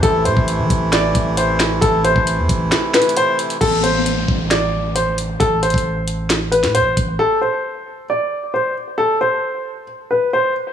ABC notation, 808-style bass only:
X:1
M:4/4
L:1/16
Q:1/4=134
K:Am
V:1 name="808-style bass" clef=bass
A,,,2 A,, A,,,2 E, A,,,4 A,,,6 | A,,,3 A,,,2 E,, A,,,2 z8 | A,,,6 A,,,8- A,,,2 | A,,,3 A,,,8 A,,3/2 A,,,3/2 A,,,2 |
z16 | z16 |]